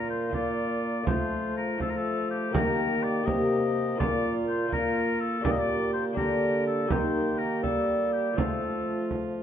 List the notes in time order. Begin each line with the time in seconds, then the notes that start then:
Already playing: A#2 A#3 F4
0.09 C5
0.29 A#3 F4, frame drum
0.34 D5
1.03 F3 A3 F4, frame drum
1.07 F4 C5
1.57 A#4
1.77 A3 F4 A4, frame drum
1.89 A#4
1.96 A4
2.30 G4
2.51 D#3 A#3 G4 A#4, frame drum
2.55 D#3
3.03 D5
3.23 C3 A#3 G4 A#4 D#5
3.27 G4, frame drum
3.95 A#2 A#3 F4 A#4 D5
3.99 A#2 A#3 F4, frame drum
4.48 C5
4.67 A#3 F4 A#4
4.71 A#3 F4 A#4, frame drum
5.20 A4
5.40 A#2 A#3 D4 G4
5.44 A#2 A#3 D5, frame drum
5.50 D#5
5.59 D5
5.93 C5
6.13 D3 A#3 D4 G4
6.17 A#3 G4 A#4, frame drum
6.67 A4
6.86 D#3 A#3 D#4 G4
6.90 C5, frame drum
7.38 A#4
7.63 G3 A4, frame drum
8.13 G4
8.33 F3 A3 C4 F4
8.37 F3 A4, frame drum
9.11 frame drum